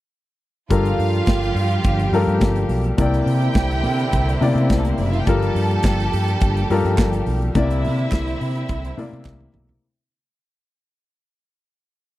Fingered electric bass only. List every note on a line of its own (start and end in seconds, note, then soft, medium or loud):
0.71 0.91 G1 medium
0.99 1.19 G2 loud
1.27 1.47 G1 medium
1.55 1.75 G2 loud
1.85 2.05 G1 loud
2.11 2.23 G2 medium
2.27 2.37 G2 medium
2.41 2.61 G1 loud
2.69 2.89 B1 loud
2.98 3.18 C2 loud
3.26 3.46 C3 loud
3.56 3.84 C2 loud
3.83 4.03 C3 medium
4.13 4.33 C2 loud
4.41 4.52 C3 medium
4.55 4.65 C3 loud
4.70 4.90 C2 loud
4.98 5.18 F#1 medium
5.27 5.47 G1 loud
5.55 5.75 G2 loud
5.84 6.04 G1 medium
6.13 6.33 G2 medium
6.42 6.62 G1 loud
6.70 6.80 G2 medium
6.85 6.94 G2 medium
6.98 7.18 G1 loud
7.27 7.47 B1 medium
7.55 7.86 C2 loud
7.84 8.04 C3 loud
8.12 8.32 C2 medium
8.41 8.61 C3 loud
8.69 8.89 C2 loud
8.98 9.08 C3 medium
9.13 9.22 C3 loud
9.26 9.45 C2 medium
9.54 9.74 B1 medium